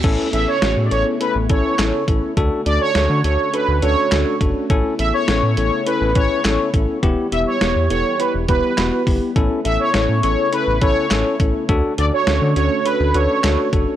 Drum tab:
CC |x-------|--------|--------|--------|
HH |xxxxxxxx|xxxxxxxx|xxxxxxxx|xxxxxxxo|
CP |------x-|------x-|------x-|------x-|
SD |--o---o-|--o---o-|--o---o-|--o---o-|
BD |o----o-o|o------o|o----o-o|o----o-o|

CC |--------|--------|
HH |xxxxxxxx|xxxxxxxx|
CP |------x-|------x-|
SD |--o---o-|--o---o-|
BD |o----o-o|o------o|